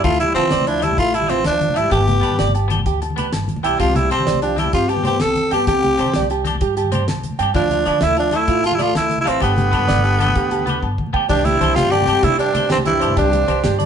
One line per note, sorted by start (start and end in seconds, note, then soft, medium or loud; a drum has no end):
0.03 0.33 D2 loud
0.03 0.13 F3 medium
0.03 0.14 A3 medium
0.03 0.19 A3 medium
0.03 0.14 E4 medium
0.03 0.18 E4 medium
0.03 0.19 F4 medium
0.03 kick medium
0.03 closed hi-hat medium
0.03 high conga medium
0.03 low agogo medium
0.13 low conga soft
0.20 0.35 G3 medium
0.20 0.34 E4 medium
0.20 0.33 E4 medium
0.20 closed hi-hat soft
0.20 low conga medium
0.28 low conga soft
0.34 0.50 D3 medium
0.34 0.70 E3 medium
0.34 0.44 F3 medium
0.34 0.45 A3 medium
0.34 0.69 C4 medium
0.34 0.46 E4 medium
0.34 0.49 F4 medium
0.34 closed hi-hat soft
0.34 low conga soft
0.34 low agogo medium
0.44 high conga medium
0.51 0.95 D2 medium
0.51 0.64 D5 medium
0.51 snare medium
0.51 closed hi-hat medium
0.60 low conga medium
0.67 0.84 F3 medium
0.67 0.84 D4 medium
0.67 0.80 E4 medium
0.67 closed hi-hat soft
0.67 low agogo medium
0.80 0.91 F3 medium
0.80 0.98 G3 medium
0.80 0.92 A3 medium
0.80 0.98 E4 medium
0.80 muted clean electric guitar stroke medium
0.80 closed hi-hat soft
0.80 high conga loud
0.80 low agogo medium
0.91 low conga medium
0.98 1.41 A1 medium
0.98 1.19 A3 medium
0.98 1.11 E4 medium
0.98 1.16 F4 medium
0.98 kick medium
0.98 closed hi-hat medium
1.14 1.34 G3 medium
1.14 1.27 E4 medium
1.14 1.31 E4 medium
1.14 closed hi-hat medium
1.14 low agogo medium
1.22 high conga medium
1.27 1.38 F3 soft
1.27 1.39 A3 medium
1.27 1.45 C4 medium
1.27 1.39 E4 medium
1.27 1.42 F4 medium
1.27 closed hi-hat soft
1.27 low conga medium
1.32 1.47 E3 medium
1.44 1.60 D2 medium
1.44 1.80 F3 medium
1.44 1.78 D4 medium
1.44 snare medium
1.44 closed hi-hat medium
1.44 low agogo medium
1.61 closed hi-hat soft
1.61 high conga medium
1.61 low conga soft
1.70 low conga medium
1.74 1.91 G#1 medium
1.74 1.85 F3 medium
1.74 1.86 A3 medium
1.74 1.91 E4 medium
1.74 1.86 E4 medium
1.74 1.89 E5 medium
1.74 closed hi-hat soft
1.74 low conga soft
1.74 low agogo medium
1.79 1.93 G3 medium
1.90 2.20 G1 loud
1.90 2.00 B3 medium
1.90 2.01 D4 medium
1.90 2.05 G4 medium
1.90 2.50 G4 medium
1.90 2.01 G4 medium
1.90 kick medium
1.90 closed hi-hat medium
1.90 high conga medium
1.90 low agogo medium
1.94 2.52 B3 medium
2.01 low conga soft
2.07 2.20 G4 medium
2.07 closed hi-hat soft
2.07 low conga medium
2.21 2.38 G2 medium
2.21 2.31 B3 medium
2.21 2.32 D4 medium
2.21 2.33 G4 medium
2.21 2.36 B4 medium
2.21 kick medium
2.21 closed hi-hat soft
2.21 low agogo medium
2.32 high conga medium
2.39 2.82 G1 medium
2.39 2.52 D5 medium
2.39 snare medium
2.39 closed hi-hat medium
2.47 low conga medium
2.55 2.68 G4 medium
2.55 closed hi-hat soft
2.55 low agogo medium
2.63 low conga soft
2.68 2.78 B3 medium
2.68 2.79 D4 medium
2.68 2.80 G4 medium
2.68 closed hi-hat soft
2.68 high conga loud
2.68 low conga soft
2.68 low agogo medium
2.79 low conga medium
2.86 3.29 D2 medium
2.86 2.99 G4 medium
2.86 kick medium
2.86 closed hi-hat medium
3.02 muted clean electric guitar stroke medium
3.02 closed hi-hat soft
3.02 low agogo medium
3.10 high conga medium
3.16 3.26 B3 medium
3.16 3.27 D4 medium
3.16 3.27 G4 medium
3.16 3.31 B4 medium
3.16 closed hi-hat soft
3.16 low conga medium
3.32 3.47 G1 medium
3.32 snare medium
3.32 closed hi-hat medium
3.32 low agogo medium
3.48 closed hi-hat soft
3.48 high conga medium
3.48 low conga soft
3.56 low conga medium
3.63 3.78 B1 medium
3.63 3.80 G3 medium
3.63 3.73 B3 medium
3.63 3.74 D4 medium
3.63 3.79 E4 medium
3.63 3.74 G4 medium
3.63 3.77 G5 medium
3.63 closed hi-hat soft
3.63 low agogo medium
3.78 4.08 C2 medium
3.78 3.88 C4 medium
3.78 3.99 C4 medium
3.78 3.89 D4 medium
3.78 3.97 F4 medium
3.78 3.92 G4 medium
3.78 muted clean electric guitar stroke medium
3.78 kick medium
3.78 closed hi-hat medium
3.78 high conga medium
3.78 low agogo medium
3.88 low conga soft
3.95 4.12 G3 medium
3.95 4.11 E4 medium
3.95 4.08 G4 medium
3.95 closed hi-hat soft
3.95 low conga loud
4.04 low conga soft
4.10 4.25 C3 medium
4.10 4.41 G3 medium
4.10 4.20 C4 medium
4.10 4.40 C4 medium
4.10 4.20 D4 medium
4.10 4.22 G4 medium
4.10 4.24 C5 medium
4.10 closed hi-hat soft
4.10 low conga soft
4.10 low agogo medium
4.19 high conga medium
4.26 4.69 C2 medium
4.26 4.39 D5 medium
4.26 snare medium
4.26 closed hi-hat medium
4.34 low conga medium
4.42 4.61 F3 medium
4.42 4.60 D4 medium
4.42 4.56 G4 medium
4.42 closed hi-hat soft
4.42 low agogo medium
4.56 4.74 G3 medium
4.56 4.66 C4 medium
4.56 4.67 D4 medium
4.56 4.73 E4 medium
4.56 4.68 G4 medium
4.56 snare soft
4.56 closed hi-hat soft
4.56 high conga medium
4.56 low agogo medium
4.65 low conga medium
4.73 5.16 G2 medium
4.73 4.93 C4 medium
4.73 4.91 F4 medium
4.73 4.86 G4 medium
4.73 kick medium
4.73 closed hi-hat medium
4.89 5.06 B3 medium
4.89 5.02 G4 medium
4.89 5.05 G4 medium
4.89 closed hi-hat soft
4.89 low agogo medium
4.96 high conga medium
5.03 5.24 B3 medium
5.03 5.13 C4 medium
5.03 5.14 D4 medium
5.03 5.15 G4 medium
5.03 5.22 G4 medium
5.03 5.18 C5 medium
5.03 closed hi-hat soft
5.03 low conga medium
5.20 5.35 C2 medium
5.20 5.53 C4 medium
5.20 5.52 A4 medium
5.20 snare medium
5.20 closed hi-hat medium
5.20 low agogo medium
5.35 closed hi-hat soft
5.35 high conga medium
5.35 low conga soft
5.51 5.66 G2 medium
5.51 5.67 B3 medium
5.51 5.61 C4 medium
5.51 5.61 D4 medium
5.51 5.67 G4 medium
5.51 5.62 G4 medium
5.51 5.64 G5 medium
5.51 closed hi-hat soft
5.51 low conga soft
5.51 low agogo medium
5.67 5.96 C2 medium
5.67 6.27 C4 medium
5.67 6.26 G4 medium
5.67 5.80 G4 medium
5.67 kick medium
5.67 closed hi-hat medium
5.67 high conga medium
5.67 low agogo medium
5.83 5.96 G4 medium
5.83 closed hi-hat soft
5.83 low conga medium
5.98 6.13 C3 medium
5.98 6.07 C4 medium
5.98 6.08 D4 medium
5.98 6.09 G4 medium
5.98 6.12 C5 medium
5.98 closed hi-hat soft
5.98 low conga soft
5.98 low agogo medium
6.06 high conga medium
6.14 6.58 C2 medium
6.14 6.28 D5 medium
6.14 snare medium
6.14 closed hi-hat medium
6.22 low conga medium
6.30 6.43 G4 medium
6.30 closed hi-hat soft
6.30 low agogo medium
6.45 6.54 C4 medium
6.45 6.55 D4 medium
6.45 6.55 G4 medium
6.45 snare soft
6.45 closed hi-hat medium
6.45 high conga medium
6.45 low agogo medium
6.53 low conga medium
6.61 7.04 G2 medium
6.61 6.74 G4 medium
6.61 kick medium
6.61 closed hi-hat medium
6.77 6.90 G4 medium
6.77 closed hi-hat soft
6.77 low agogo medium
6.84 high conga medium
6.92 7.01 C4 medium
6.92 7.02 D4 medium
6.92 7.03 G4 medium
6.92 7.05 C5 medium
6.92 closed hi-hat soft
6.92 low conga medium
7.08 7.22 C2 medium
7.08 snare medium
7.08 closed hi-hat medium
7.08 low agogo medium
7.23 closed hi-hat soft
7.23 high conga medium
7.23 low conga soft
7.31 low conga medium
7.39 7.54 G2 medium
7.39 7.48 C4 medium
7.39 7.49 D4 medium
7.39 7.50 G4 medium
7.39 7.52 G5 medium
7.39 closed hi-hat soft
7.39 low agogo medium
7.54 7.83 D2 medium
7.54 7.64 F3 medium
7.54 8.06 F3 medium
7.54 7.64 A3 medium
7.54 8.05 D4 medium
7.54 7.65 E4 medium
7.54 7.68 F4 medium
7.54 kick medium
7.54 closed hi-hat medium
7.54 high conga medium
7.54 low agogo medium
7.63 low conga soft
7.71 7.83 F4 medium
7.71 closed hi-hat soft
7.71 low conga medium
7.78 low conga soft
7.86 8.00 D3 medium
7.86 7.95 F3 medium
7.86 7.96 A3 medium
7.86 7.96 E4 medium
7.86 7.99 D5 medium
7.86 closed hi-hat soft
7.86 low conga soft
7.86 low agogo medium
7.93 high conga medium
8.01 8.45 D2 medium
8.01 8.18 A3 medium
8.01 8.18 E4 medium
8.01 8.14 E5 medium
8.01 snare medium
8.01 closed hi-hat medium
8.09 low conga medium
8.17 8.36 F3 medium
8.17 8.37 D4 medium
8.17 8.30 F4 medium
8.17 closed hi-hat soft
8.17 low agogo medium
8.31 8.42 F3 medium
8.31 8.43 A3 medium
8.31 8.65 A3 medium
8.31 closed hi-hat soft
8.31 high conga medium
8.31 low agogo medium
8.35 8.43 E4 medium
8.35 8.65 E4 medium
8.48 8.91 A1 medium
8.48 8.61 F4 medium
8.48 kick medium
8.48 closed hi-hat medium
8.64 8.76 A3 medium
8.64 8.77 F4 medium
8.64 8.76 F4 medium
8.64 closed hi-hat soft
8.64 low agogo medium
8.71 8.85 G3 medium
8.71 8.83 E4 medium
8.71 high conga medium
8.79 8.89 F3 medium
8.79 8.89 A3 medium
8.79 8.90 E4 medium
8.79 8.96 F4 medium
8.79 8.92 D5 medium
8.79 closed hi-hat soft
8.79 low conga medium
8.84 8.97 A3 medium
8.95 9.09 D2 medium
8.95 9.18 E4 medium
8.95 snare medium
8.95 closed hi-hat medium
8.95 low agogo medium
8.99 9.19 A3 medium
9.09 closed hi-hat soft
9.09 high conga medium
9.09 low conga soft
9.18 9.31 G3 medium
9.18 9.30 E4 medium
9.18 low conga medium
9.24 9.40 A1 medium
9.24 9.35 F3 medium
9.24 9.35 A3 medium
9.24 9.42 C4 medium
9.24 9.36 E4 medium
9.24 9.39 F5 medium
9.24 closed hi-hat medium
9.24 low conga soft
9.24 low agogo medium
9.29 9.44 E3 medium
9.40 9.71 G1 medium
9.40 9.51 B3 medium
9.40 10.95 B3 medium
9.40 9.51 D4 medium
9.40 9.55 G4 medium
9.40 9.51 G4 medium
9.40 kick medium
9.40 closed hi-hat medium
9.40 high conga medium
9.40 low agogo medium
9.46 10.96 D3 medium
9.56 9.70 G4 medium
9.56 closed hi-hat soft
9.56 low conga medium
9.71 9.88 G2 medium
9.71 9.82 B3 medium
9.71 9.83 D4 medium
9.71 9.83 G4 medium
9.71 9.86 B4 medium
9.71 kick medium
9.71 closed hi-hat soft
9.71 low agogo medium
9.80 high conga medium
9.88 10.32 G1 loud
9.88 10.01 D5 medium
9.88 snare medium
9.88 closed hi-hat medium
9.97 low conga medium
10.04 10.17 G4 medium
10.04 closed hi-hat soft
10.04 low agogo medium
10.18 10.29 B3 medium
10.18 10.30 D4 medium
10.18 10.30 G4 medium
10.18 snare soft
10.18 closed hi-hat soft
10.18 high conga medium
10.18 low conga soft
10.18 low agogo medium
10.27 low conga medium
10.35 10.79 D2 medium
10.35 10.49 G4 medium
10.35 kick medium
10.35 closed hi-hat medium
10.51 10.65 G4 medium
10.51 closed hi-hat soft
10.51 low conga soft
10.51 low agogo medium
10.59 high conga medium
10.66 10.76 B3 medium
10.66 10.77 D4 medium
10.66 10.78 G4 medium
10.66 10.80 B4 medium
10.66 closed hi-hat soft
10.66 low conga medium
10.83 10.97 G1 medium
10.83 kick soft
10.83 low conga soft
10.83 low agogo medium
10.98 kick soft
10.98 high conga medium
11.06 low conga soft
11.13 11.28 D2 medium
11.13 11.23 B3 medium
11.13 11.24 D4 medium
11.13 11.25 G4 medium
11.13 11.27 G5 medium
11.13 kick medium
11.13 low agogo medium
11.27 11.58 C2 loud
11.27 11.39 C4 medium
11.27 11.47 D4 loud
11.27 11.39 D4 medium
11.27 13.86 G4 medium
11.27 11.42 G4 medium
11.27 11.40 G4 medium
11.27 13.86 C5 medium
11.27 13.86 D5 medium
11.27 kick medium
11.27 crash medium
11.27 high conga medium
11.27 low agogo medium
11.32 11.47 G2 medium
11.45 11.80 G2 medium
11.45 11.77 E4 medium
11.45 11.58 G4 medium
11.45 closed hi-hat medium
11.45 low conga medium
11.54 low conga soft
11.61 11.75 C2 medium
11.61 11.70 C4 medium
11.61 11.71 D4 medium
11.61 11.72 G4 medium
11.61 11.74 C5 medium
11.61 closed hi-hat soft
11.61 high conga loud
11.61 low agogo medium
11.75 12.05 G2 medium
11.75 11.95 C3 medium
11.75 11.93 F4 loud
11.75 11.89 G4 medium
11.75 snare medium
11.75 closed hi-hat medium
11.75 low conga medium
11.85 low conga soft
11.91 12.25 C3 loud
11.91 12.25 G4 loud
11.91 12.05 D5 medium
11.91 closed hi-hat soft
11.91 high conga loud
11.91 low agogo medium
12.01 low conga medium
12.06 12.22 G2 medium
12.06 12.16 C4 medium
12.06 12.17 D4 medium
12.06 12.18 G4 medium
12.06 closed hi-hat medium
12.06 low agogo medium
12.23 12.38 G2 medium
12.23 12.66 C3 medium
12.23 12.39 E4 loud
12.23 12.36 G4 medium
12.23 kick medium
12.23 closed hi-hat medium
12.23 high conga medium
12.23 low conga loud
12.39 12.68 G2 medium
12.39 12.68 D4 medium
12.39 12.52 G4 medium
12.39 closed hi-hat soft
12.39 low agogo medium
12.54 12.63 C4 medium
12.54 12.64 D4 medium
12.54 12.65 G4 medium
12.54 closed hi-hat soft
12.54 high conga medium
12.54 low conga loud
12.70 12.99 C2 medium
12.70 12.77 G2 medium
12.70 12.78 C4 medium
12.70 12.83 G4 medium
12.70 snare medium
12.70 closed hi-hat medium
12.70 low conga soft
12.70 low agogo medium
12.78 low conga medium
12.85 13.14 G2 medium
12.85 13.15 E4 medium
12.85 12.98 G4 medium
12.85 closed hi-hat soft
12.85 high conga medium
12.85 low conga soft
13.00 13.16 G2 medium
13.00 13.10 C4 medium
13.00 13.11 D4 medium
13.00 13.11 G4 medium
13.00 13.14 C5 medium
13.00 closed hi-hat soft
13.00 low agogo medium
13.09 low conga medium
13.16 13.46 C2 loud
13.16 13.76 G2 medium
13.16 13.76 D4 medium
13.16 13.30 G4 medium
13.16 kick medium
13.16 closed hi-hat medium
13.16 high conga medium
13.16 low agogo medium
13.32 13.45 G4 medium
13.32 closed hi-hat medium
13.32 low conga medium
13.41 low conga soft
13.48 13.63 C2 medium
13.48 13.58 C4 medium
13.48 13.58 D4 medium
13.48 13.59 G4 medium
13.48 13.61 C5 medium
13.48 closed hi-hat soft
13.48 high conga medium
13.48 low agogo medium
13.63 13.86 G2 medium
13.63 13.76 G4 medium
13.63 snare medium
13.63 closed hi-hat medium
13.63 low conga loud
13.73 low conga soft
13.79 13.86 D5 medium
13.79 closed hi-hat soft
13.79 high conga medium
13.79 low agogo medium